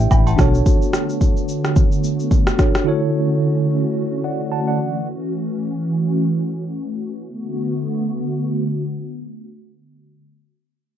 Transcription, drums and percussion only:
0.00 shaker
0.11 kick, low woodblock, shaker
0.27 high agogo, shaker
0.39 kick, cross-stick, shaker
0.55 shaker
0.66 kick, shaker
0.82 shaker
0.93 cross-stick, shaker
1.09 shaker
1.21 kick, shaker
1.37 shaker
1.49 shaker
1.65 cross-stick, shaker
1.76 kick, shaker
1.92 shaker
2.04 shaker
2.20 shaker
2.31 kick, shaker
2.47 cross-stick, shaker
2.59 kick, cross-stick, shaker
2.75 cross-stick, shaker

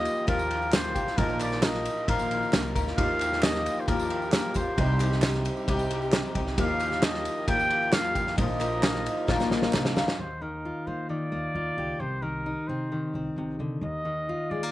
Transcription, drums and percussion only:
0.05 ride, tambourine
0.17 tambourine
0.28 kick, ride, tambourine
0.39 tambourine
0.51 ride
0.62 tambourine
0.73 snare, clap, ride, tambourine
0.96 kick, ride, tambourine
1.07 snare
1.18 kick, ride, tambourine
1.29 tambourine
1.40 clap, ride, tambourine
1.52 snare
1.63 snare, clap, ride, tambourine
1.74 snare, tambourine
1.85 ride, tambourine
1.97 tambourine
2.08 kick, ride, tambourine
2.19 tambourine
2.31 ride
2.42 tambourine
2.53 snare, clap, ride, tambourine
2.76 kick, ride, tambourine
2.87 snare, tambourine
2.98 kick, ride, tambourine
3.20 clap, ride, tambourine
3.32 snare
3.43 snare, clap, ride, tambourine
3.55 snare
3.66 ride, tambourine
3.77 tambourine
3.88 kick, ride, tambourine
3.99 tambourine
4.10 ride
4.22 tambourine
4.33 snare, clap, ride, tambourine
4.44 tambourine
4.54 kick, ride, tambourine
4.77 kick, ride, tambourine
4.99 clap, ride, tambourine
5.12 snare
5.22 snare, clap, ride, tambourine
5.34 snare
5.45 ride, tambourine
5.56 tambourine
5.68 kick, ride, tambourine
5.79 tambourine
5.91 ride
6.02 tambourine
6.13 snare, clap, ride, tambourine
6.24 tambourine
6.35 kick, ride
6.47 snare
6.57 kick, ride, tambourine
6.79 ride, tambourine
6.91 snare
7.02 snare, clap, ride, tambourine
7.14 snare
7.25 ride, tambourine
7.37 tambourine
7.48 kick, ride, tambourine
7.60 tambourine
7.70 ride
7.82 tambourine
7.93 snare, clap, ride, tambourine
8.15 kick, ride, tambourine
8.27 snare
8.38 kick, ride, tambourine
8.49 tambourine
8.60 clap, ride, tambourine
8.72 tambourine
8.83 snare, clap, ride, tambourine
8.95 snare
9.06 ride, tambourine
9.17 tambourine
9.28 kick, snare, tambourine
9.40 snare, tambourine
9.51 snare, tambourine
9.62 snare, tambourine
9.73 snare, clap, tambourine
9.85 snare
9.96 snare, tambourine
10.08 snare

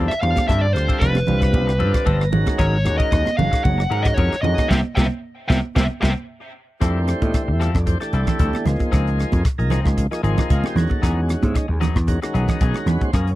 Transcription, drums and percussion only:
0.11 cross-stick
0.23 ride
0.36 kick, cross-stick, ride, high conga
0.49 kick, cross-stick, ride
0.76 cross-stick, ride
0.89 kick, ride
1.01 kick, cross-stick, ride
1.15 cross-stick, high conga
1.27 ride, low conga
1.42 kick, cross-stick, ride
1.53 kick, ride, high conga
1.69 cross-stick
1.80 ride
1.94 kick, cross-stick, ride
2.07 kick, ride
2.21 cross-stick
2.32 ride, low conga
2.46 kick, cross-stick, ride, high conga
2.59 kick, cross-stick, ride
2.85 cross-stick, ride
3.00 kick, ride
3.12 kick, cross-stick, ride
3.26 cross-stick, high conga
3.39 ride, low conga
3.53 kick, cross-stick, ride
3.65 kick, ride, high conga
3.80 cross-stick
3.92 ride
4.05 kick, cross-stick, ride
4.18 kick, ride
4.33 cross-stick
4.44 ride, low conga
4.58 kick, cross-stick, ride, high conga
4.71 kick, snare, high conga
4.97 kick, snare, high conga
5.50 kick, snare, high conga
5.76 kick, snare, high conga
6.02 kick, snare, high conga
6.81 kick, cross-stick, closed hi-hat
7.08 cross-stick, closed hi-hat
7.22 kick, closed hi-hat, high conga
7.34 kick, cross-stick, closed hi-hat
7.61 cross-stick, closed hi-hat
7.75 kick, cross-stick
7.87 kick, closed hi-hat
8.01 cross-stick, closed hi-hat
8.13 closed hi-hat
8.27 kick, cross-stick, closed hi-hat, low conga
8.39 kick, closed hi-hat
8.53 cross-stick, high conga
8.66 cross-stick, closed hi-hat, low conga
8.80 kick, closed hi-hat, high conga
8.93 kick, cross-stick, closed hi-hat
9.07 closed hi-hat
9.19 cross-stick, closed hi-hat
9.32 kick, closed hi-hat, high conga
9.45 kick, cross-stick, closed hi-hat
9.59 closed hi-hat
9.70 cross-stick, closed hi-hat, low conga
9.86 kick, cross-stick
9.98 kick, closed hi-hat
10.12 cross-stick, closed hi-hat
10.24 closed hi-hat
10.38 kick, cross-stick, low conga
10.50 kick, closed hi-hat
10.64 cross-stick, high conga
10.76 cross-stick, closed hi-hat, low conga
10.90 kick, high conga
11.03 kick, cross-stick, closed hi-hat
11.29 cross-stick, closed hi-hat
11.43 kick, closed hi-hat, high conga
11.55 kick, cross-stick, closed hi-hat
11.81 cross-stick, closed hi-hat, low conga
11.96 kick, cross-stick
12.08 kick, closed hi-hat
12.22 cross-stick, closed hi-hat
12.35 closed hi-hat
12.48 kick, cross-stick, closed hi-hat, low conga
12.61 kick, closed hi-hat
12.74 cross-stick, high conga
12.87 cross-stick, closed hi-hat, low conga
13.01 kick, closed hi-hat, high conga
13.13 kick, cross-stick, closed hi-hat
13.27 closed hi-hat

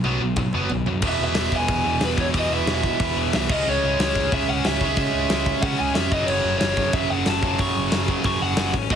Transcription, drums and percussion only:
0.04 high tom
0.36 kick, mid tom
0.53 mid tom
0.70 floor tom
0.86 floor tom
1.02 kick, crash
1.35 snare, open hi-hat
1.52 kick
1.68 kick, open hi-hat
2.01 snare, open hi-hat
2.18 kick
2.34 kick, open hi-hat
2.67 snare, open hi-hat
2.83 kick
3.00 kick, open hi-hat
3.33 snare, open hi-hat
3.49 kick, crash
4.00 snare, open hi-hat
4.15 kick
4.32 kick, open hi-hat
4.64 snare, open hi-hat
4.81 kick
4.96 kick, open hi-hat
5.30 snare, open hi-hat
5.46 kick
5.63 kick, open hi-hat
5.95 snare, open hi-hat
6.12 kick
6.28 crash
6.60 snare, open hi-hat
6.77 kick
6.93 kick, open hi-hat
7.26 snare, open hi-hat
7.43 kick
7.59 kick, open hi-hat
7.92 snare, open hi-hat
8.08 kick
8.24 kick, open hi-hat
8.57 snare, open hi-hat
8.74 kick
8.90 kick, crash

